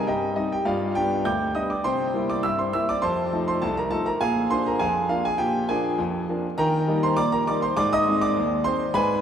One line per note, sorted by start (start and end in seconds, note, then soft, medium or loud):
0.07 0.32 G2 medium
0.07 0.35 G4 medium
0.07 0.34 D#5 medium
0.07 0.37 G5 medium
0.36 0.53 G3 medium
0.36 0.53 C4 soft
0.36 0.51 D#4 medium
0.36 0.51 D#5 medium
0.52 0.66 G4 medium
0.52 0.67 G5 medium
0.65 0.91 G2 medium
0.65 0.94 F4 medium
0.65 0.94 D5 medium
0.65 0.95 F5 medium
0.95 1.12 G3 soft
0.95 1.12 B3 soft
0.95 1.12 D4 medium
0.95 1.24 G4 medium
0.95 1.25 G5 loud
1.25 1.51 D2 medium
1.25 1.54 G5 medium
1.25 1.54 D6 medium
1.25 1.55 G6 loud
1.55 1.71 G3 soft
1.55 1.72 B3 soft
1.55 1.72 D4 soft
1.55 1.69 D#5 medium
1.55 1.70 D#6 medium
1.70 1.85 D5 medium
1.70 1.85 D6 medium
1.84 2.10 C3 medium
1.84 2.27 C5 medium
1.84 2.26 G5 medium
1.84 2.29 C6 loud
2.14 2.30 G3 medium
2.14 2.31 A#3 soft
2.14 2.31 E4 medium
2.30 2.44 D5 medium
2.30 2.44 D6 medium
2.43 2.69 G2 medium
2.43 2.58 E5 medium
2.43 2.58 E6 loud
2.59 2.73 C5 medium
2.59 2.74 C6 medium
2.73 2.90 G3 medium
2.73 2.90 A#3 soft
2.73 2.91 E4 medium
2.73 2.88 E5 medium
2.73 2.88 E6 loud
2.89 3.03 D5 medium
2.89 3.03 D6 medium
3.02 3.28 F2 medium
3.02 3.45 C5 medium
3.02 3.45 A5 medium
3.02 3.46 C6 loud
3.32 3.49 F3 medium
3.32 3.49 A3 soft
3.32 3.49 D#4 medium
3.48 3.62 C5 medium
3.48 3.62 C6 medium
3.62 3.88 C2 medium
3.62 3.77 A4 medium
3.62 3.77 A5 loud
3.77 3.92 A#4 medium
3.77 3.92 A#5 medium
3.91 4.07 F3 medium
3.91 4.08 A3 soft
3.91 4.08 D#4 medium
3.91 4.06 A4 medium
3.91 4.06 A5 loud
4.06 4.21 A#4 medium
4.06 4.21 A#5 medium
4.21 4.46 A#2 medium
4.21 4.49 G#4 medium
4.21 4.49 F5 medium
4.21 4.51 G#5 loud
4.50 4.67 F3 medium
4.50 4.67 A#3 soft
4.50 4.68 D4 medium
4.50 4.65 C5 medium
4.50 4.65 C6 loud
4.66 4.80 A#4 medium
4.66 4.81 A#5 medium
4.79 5.05 F2 medium
4.79 5.08 G#4 medium
4.79 5.08 F5 medium
4.79 5.09 G#5 loud
5.09 5.26 F3 soft
5.09 5.26 A#3 medium
5.09 5.26 D4 medium
5.09 5.24 F4 medium
5.09 5.24 F5 medium
5.25 5.39 G#4 medium
5.25 5.40 G#5 medium
5.38 5.64 A#2 medium
5.38 5.67 G4 medium
5.38 5.68 G5 loud
5.69 5.85 F3 medium
5.69 5.85 A#3 medium
5.69 5.86 D4 medium
5.69 5.97 G#4 medium
5.69 5.98 G#5 loud
5.98 6.23 F2 medium
6.29 6.45 F3 medium
6.29 6.45 A#3 medium
6.29 6.46 D4 medium
6.58 6.83 D#3 medium
6.58 7.00 A#4 medium
6.58 6.99 G5 medium
6.58 7.02 A#5 loud
6.88 7.04 G3 medium
6.88 7.04 A#3 medium
6.88 7.04 D#4 medium
7.03 7.17 C5 medium
7.03 7.17 C6 loud
7.17 7.42 A#2 medium
7.17 7.31 D5 loud
7.17 7.31 D6 loud
7.32 7.46 A#4 medium
7.32 7.47 A#5 loud
7.47 7.64 G3 medium
7.47 7.64 A#3 soft
7.47 7.64 D#4 medium
7.47 7.61 D5 medium
7.47 7.62 D6 loud
7.62 7.76 C5 medium
7.62 7.76 C6 loud
7.77 8.02 G#2 loud
7.77 7.90 D5 loud
7.77 7.91 D6 loud
7.93 8.20 D#5 loud
7.93 8.21 D#6 loud
8.07 8.23 G#3 medium
8.07 8.23 C4 medium
8.07 8.24 D#4 medium
8.21 8.63 D5 medium
8.21 8.65 D6 loud
8.37 8.61 D#2 medium
8.64 8.81 G#3 medium
8.64 8.81 C4 medium
8.64 8.82 D#4 medium
8.64 8.93 C5 medium
8.64 8.94 C6 loud
8.94 9.19 G#2 medium
8.94 9.21 B4 medium
8.94 9.21 G#5 medium
8.94 9.21 B5 loud